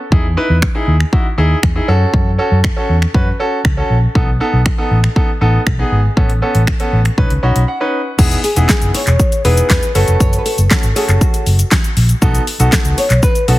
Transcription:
0.12 fingered electric bass E2, grand piano D#4 E4 G#4, kick
0.37 grand piano D#4 E4 B4
0.50 fingered electric bass E2
0.62 finger snap, kick
0.75 grand piano D#4 E4 G#4
0.88 fingered electric bass D#2
1.00 finger snap
1.13 grand piano D#4 E4 F#4, kick
1.38 fingered electric bass D#2, grand piano D#4 E4 G#4
1.63 fingered electric bass E2, finger snap, kick
1.75 grand piano D#4 E4 G#4
1.88 fingered electric bass F#2, grand piano C#4 F#4 A4
2.14 fingered electric bass F#2, kick
2.38 grand piano C#4 F#4 A4
2.51 fingered electric bass F#2
2.64 finger snap, kick
2.76 grand piano C#4 F#4 A4
2.89 fingered electric bass E2
3.02 finger snap
3.14 fingered electric bass F#2, grand piano C#4 F#4 B4, kick
3.40 grand piano C#4 F#4 A4
3.65 fingered electric bass C#2, finger snap, kick
3.77 grand piano C#4 F#4 A4
3.90 fingered electric bass A#1
4.15 fingered electric bass B1, grand piano B3 D#4 A4, kick
4.40 grand piano B3 D#4 A4
4.53 fingered electric bass B1
4.66 finger snap, kick
4.78 grand piano B3 D#4 A4
4.91 fingered electric bass A1
5.04 finger snap
5.16 grand piano B3 D#4 A4, kick
5.41 fingered electric bass A1, grand piano B3 D#4 A4
5.67 fingered electric bass B1, finger snap, kick
5.79 grand piano B3 D#4 G#4
5.92 fingered electric bass G#1
6.17 fingered electric bass A1, grand piano B3 C#4 A4, kick
6.30 closed hi-hat
6.42 grand piano B3 C#4 A4
6.55 fingered electric bass A1, closed hi-hat
6.67 finger snap, kick
6.80 grand piano B3 C#4 A4, closed hi-hat
6.93 fingered electric bass A1
7.05 finger snap, closed hi-hat
7.18 fingered electric bass B1, grand piano C#4 D#4 B4, kick
7.30 fingered electric bass C#2, closed hi-hat
7.43 fingered electric bass B1, grand piano C#4 D#4 F#4 B5
7.56 fingered electric bass B1, closed hi-hat
7.68 grand piano F#5
7.81 grand piano C#4 D#4 B4
8.18 fingered electric bass E1, grand piano B3 D#4 E4 G#4, kick, crash, shaker
8.31 closed hi-hat, shaker
8.44 nylon-string guitar G#4, open hi-hat, shaker
8.56 fingered electric bass E1, grand piano B3 D#4 E4 G#4, closed hi-hat, shaker
8.69 nylon-string guitar G#4, kick, snare, clap, shaker
8.82 fingered electric bass F#1, closed hi-hat, shaker
8.94 nylon-string guitar C#5, open hi-hat, shaker
9.07 fingered electric bass E1, clap, closed hi-hat, shaker
9.19 kick, shaker
9.32 closed hi-hat, shaker
9.45 fingered electric bass E1, grand piano B3 D#4 E4 G#4, nylon-string guitar B4, open hi-hat, shaker
9.57 closed hi-hat, shaker
9.70 fingered electric bass E2, nylon-string guitar B4, kick, snare, clap, shaker
9.83 closed hi-hat, shaker
9.95 fingered electric bass F#1, grand piano A3 C#4 F#4 A4, nylon-string guitar B4, open hi-hat, shaker
10.08 fingered electric bass F1, closed hi-hat, shaker
10.20 fingered electric bass F#1, nylon-string guitar C#5, kick, shaker
10.33 closed hi-hat, shaker
10.38 nylon-string guitar B4
10.46 nylon-string guitar A4, open hi-hat, shaker
10.58 fingered electric bass F#1, closed hi-hat, shaker
10.71 grand piano A3 C#4 F#4 A4, kick, snare, clap, shaker
10.83 fingered electric bass G#1, closed hi-hat, shaker
10.96 grand piano A3 C#4 F#4 A4, nylon-string guitar G#4, open hi-hat, shaker
11.09 fingered electric bass F#1, clap, closed hi-hat, shaker
11.21 nylon-string guitar F#4, kick, shaker
11.34 closed hi-hat, shaker
11.46 fingered electric bass F#1, open hi-hat, shaker
11.59 closed hi-hat, shaker
11.72 kick, snare, clap, shaker
11.84 closed hi-hat, shaker
11.97 fingered electric bass A#1, open hi-hat, shaker
12.09 closed hi-hat, shaker
12.22 fingered electric bass B1, grand piano B3 D#4 F#4 A4, kick, shaker
12.35 closed hi-hat, shaker
12.47 open hi-hat, shaker
12.60 fingered electric bass B1, grand piano B3 D#4 F#4 A4, closed hi-hat, shaker
12.72 nylon-string guitar A4, kick, snare, clap, shaker
12.85 fingered electric bass C#2, closed hi-hat, shaker
12.98 nylon-string guitar C#5, open hi-hat, shaker
13.10 fingered electric bass B1, clap, closed hi-hat, shaker
13.23 nylon-string guitar B4, kick, shaker
13.35 closed hi-hat, shaker
13.48 fingered electric bass B1, grand piano B3 D#4 F#4 A4, nylon-string guitar A4, open hi-hat, shaker

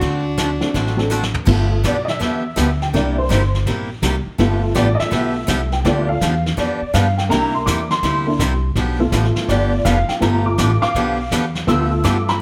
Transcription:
Already playing: fiddle D4, hollow-body jazz guitar F#4
0.01 upright bass D2, steel-string acoustic guitar D3 A3 C4 F#4 A4, brush sweep, kick, snare
0.38 steel-string acoustic guitar D3 A3 C4 F#4 A4, kick, snare, hi-hat pedal
0.61 honky-tonk piano F#3 A3 C4 D4 F#4, snare
0.74 upright bass A1, steel-string acoustic guitar D3 A3 C4 F#4 A4, brush sweep, kick, snare
0.87 snare
0.97 honky-tonk piano F#3 A3 C4 D4 A4, snare
1.10 steel-string acoustic guitar D3 A3 C4 F#4 A4, hi-hat pedal
1.23 snare
1.34 floor tom
1.45 upright bass G1, steel-string acoustic guitar D3 F3 B3 D4 G4, honky-tonk piano A3 B3 F4, brush sweep, kick, snare, crash
1.84 upright bass B1, steel-string acoustic guitar D3 F3 B3 D4 G4, honky-tonk piano D5, kick, snare, hi-hat pedal
2.05 honky-tonk piano D#5, snare
2.09 honky-tonk piano E5
2.20 upright bass E2, steel-string acoustic guitar D3 F3 B3 D4 G4, brush sweep, kick, snare
2.56 upright bass D2, steel-string acoustic guitar D3 F3 B3 D4 G4, kick, snare, hi-hat pedal
2.82 honky-tonk piano G5, snare
2.93 upright bass C2, steel-string acoustic guitar C3 G3 A#3 E4 G4, honky-tonk piano A#3 D4 E4 D5, brush sweep, kick, snare
3.18 honky-tonk piano C5
3.29 upright bass G1, steel-string acoustic guitar C3 G3 A#3 E4 G4, kick, snare, hi-hat pedal
3.54 snare
3.66 upright bass A#1, steel-string acoustic guitar C3 G3 A#3 E4 G4, brush sweep, kick, snare
4.02 upright bass C2, steel-string acoustic guitar C3 G3 A#3 E4 G4, kick, snare, hi-hat pedal
4.26 muted upright bass stroke
4.38 upright bass G1, steel-string acoustic guitar D3 F3 B3 D4 G4, honky-tonk piano A3 B3 F4, brush sweep, kick, snare
4.75 upright bass A1, steel-string acoustic guitar D3 F3 B3 D4 G4, honky-tonk piano D5, kick, snare, hi-hat pedal
4.95 honky-tonk piano D#5
5.00 honky-tonk piano E5, snare
5.11 upright bass B1, steel-string acoustic guitar D3 F3 B3 D4 G4, brush sweep, kick, snare
5.47 upright bass C2, steel-string acoustic guitar D3 F3 B3 D4 G4, kick, snare, hi-hat pedal
5.72 honky-tonk piano G5, snare
5.85 upright bass D2, steel-string acoustic guitar D3 F3 B3 D4 G4, honky-tonk piano A3 B3 F4 D5, brush sweep, kick, snare
6.09 honky-tonk piano F5
6.21 upright bass E2, steel-string acoustic guitar D3 F3 B3 D4 G4, kick, snare, hi-hat pedal
6.46 snare
6.57 upright bass F2, steel-string acoustic guitar D3 F3 B3 D4 G4, honky-tonk piano D5, brush sweep, kick, snare
6.82 muted upright bass stroke
6.94 upright bass G2, steel-string acoustic guitar D3 F3 B3 D4 G4, honky-tonk piano F5, kick, snare, hi-hat pedal
7.18 honky-tonk piano G5, snare
7.29 upright bass C2, steel-string acoustic guitar C3 G3 A#3 E4 G4, honky-tonk piano A#3 D4 E4 A#5, brush sweep, kick, snare
7.54 honky-tonk piano C6
7.66 upright bass E2, steel-string acoustic guitar C3 G3 A#3 E4 G4, honky-tonk piano D6, kick, snare, hi-hat pedal
7.90 honky-tonk piano C6, snare
8.03 upright bass D2, steel-string acoustic guitar C3 G3 A#3 E4 G4, brush sweep, kick, snare
8.27 honky-tonk piano A#3 D4 E4
8.39 upright bass C2, steel-string acoustic guitar C3 G3 A#3 E4 G4, kick, snare, hi-hat pedal
8.76 upright bass B1, steel-string acoustic guitar D3 F3 B3 D4 G4, brush sweep, kick, snare
8.99 honky-tonk piano A3 B3 F4
9.12 upright bass A1, steel-string acoustic guitar D3 F3 B3 D4 G4, kick, snare, hi-hat pedal
9.24 snare
9.36 snare
9.48 upright bass G1, steel-string acoustic guitar D3 F3 B3 D4 G4, honky-tonk piano D5, brush sweep, kick, snare
9.85 upright bass F1, steel-string acoustic guitar D3 F3 B3 D4 G4, honky-tonk piano F5, kick, snare, hi-hat pedal
10.09 honky-tonk piano G5, muted upright bass stroke, snare
10.20 upright bass G1, steel-string acoustic guitar D3 F3 B3 D4 G4, honky-tonk piano A3 B3 F4 A#5, brush sweep, kick, snare
10.46 honky-tonk piano D6
10.58 upright bass A1, steel-string acoustic guitar D3 F3 B3 D4 G4, honky-tonk piano D6, kick, snare, hi-hat pedal
10.82 honky-tonk piano F5 D6, muted upright bass stroke, snare
10.95 upright bass B1, steel-string acoustic guitar D3 F3 B3 D4 G4, brush sweep, kick, snare
11.31 upright bass E2, steel-string acoustic guitar D3 F3 B3 D4 G4, kick, snare, hi-hat pedal
11.55 snare
11.67 upright bass D2, steel-string acoustic guitar D3 F3 B3 D4 G4, honky-tonk piano A3 B3 F4 E6, brush sweep, kick, snare
12.04 upright bass G2, steel-string acoustic guitar D3 F3 B3 D4 G4, honky-tonk piano D6, kick, snare, hi-hat pedal
12.28 honky-tonk piano B5, snare

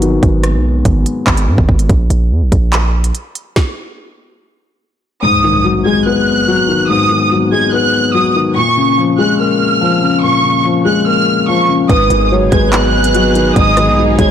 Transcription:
Already playing: 808-style bass G#1, felt piano G#2 D#3 F#3 G#3 B3
0.02 felt piano D#3, closed hi-hat
0.23 808-style bass G#1, kick, closed hi-hat
0.43 cross-stick, closed hi-hat
0.54 808-style bass B1
0.85 808-style bass G#1, kick, closed hi-hat
1.06 closed hi-hat
1.27 808-style bass G#1, kick, clap
1.37 closed hi-hat
1.48 808-style bass G#2
1.58 808-style bass G#1, kick
1.69 808-style bass G#1, kick
1.79 closed hi-hat
1.89 808-style bass A#1, kick, closed hi-hat
2.10 808-style bass A#1, closed hi-hat
2.31 808-style bass F2
2.42 808-style bass A#1
2.52 808-style bass A#1, kick, closed hi-hat
2.73 clap, closed hi-hat
3.04 closed hi-hat
3.15 closed hi-hat
3.35 closed hi-hat
3.56 kick, snare
5.22 felt piano G#2, violin section D#6, impact
5.43 felt piano D#3
5.64 felt piano F#3
5.85 felt piano G#3, violin section G#6
6.06 felt piano B3, violin section F#6
6.48 felt piano F#3
6.68 felt piano D#3
6.89 felt piano G#2, violin section D#6
7.10 felt piano D#3
7.31 felt piano F#3
7.52 felt piano G#3, violin section G#6
7.73 felt piano B3, violin section F#6
8.14 felt piano F#3, violin section D#6
8.35 felt piano D#3
8.56 felt piano A#2, violin section C#6
8.77 felt piano C#3
8.98 felt piano F3
9.18 felt piano G#3, violin section F#6
9.39 felt piano A#3, violin section F6
9.81 felt piano F3
10.02 felt piano C#3
10.22 felt piano A#2, violin section C#6
10.44 felt piano C#3
10.64 felt piano F3
10.85 felt piano G#3, violin section F#6
11.06 felt piano A#3, violin section F6
11.48 felt piano F3, violin section C#6
11.69 felt piano C#3
11.89 808-style bass G#1, felt piano G#2, string section F#3 B3 D#4 G#4, soft synth lead B4, violin section D#6, kick, closed hi-hat
12.10 808-style bass G#1, felt piano D#3, closed hi-hat
12.31 felt piano F#3, soft synth lead C#5
12.41 808-style bass F#1
12.52 808-style bass G#1, felt piano G#3, soft synth lead B4, violin section G#6, kick, closed hi-hat
12.73 felt piano B3, violin section F#6, clap, closed hi-hat
13.04 closed hi-hat
13.14 felt piano F#3, closed hi-hat
13.35 felt piano D#3, closed hi-hat
13.56 808-style bass G#1, felt piano G#2, soft synth lead D#5, violin section D#6, kick, closed hi-hat
13.77 felt piano D#3, cross-stick, closed hi-hat
13.88 808-style bass B1
13.98 felt piano F#3
14.19 808-style bass G#1, felt piano G#3, soft synth lead C#5, violin section G#6, kick, closed hi-hat

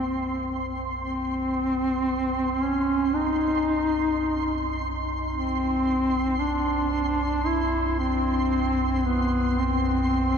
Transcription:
Already playing: synth drone B1 F#2, duduk C4, synth texture C6
1.02 duduk C4
2.62 duduk C#4
3.15 duduk D#4
5.34 duduk C4
6.39 duduk D4
7.46 duduk E4
7.99 duduk C4
9.06 duduk B3
9.60 duduk C4

